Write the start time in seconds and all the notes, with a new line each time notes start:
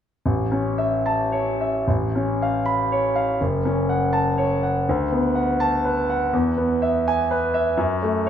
0.26 A1
0.52 C#4
0.78 E5
1.06 A5
1.32 C#5
1.61 E5
1.88 A1
2.15 C#4
2.42 F5
2.66 B5
2.92 C#5
3.16 F5
3.41 F#1
3.65 C#4
3.89 F#5
4.13 A5
4.38 C#5
4.63 F#5
4.89 D2
5.12 B3
5.35 F#5
5.60 A5
5.85 B4
6.10 F#5
6.33 E2
6.57 B3
6.82 E5
7.08 G#5
7.31 B4
7.54 E5
7.77 F#2
8.02 A3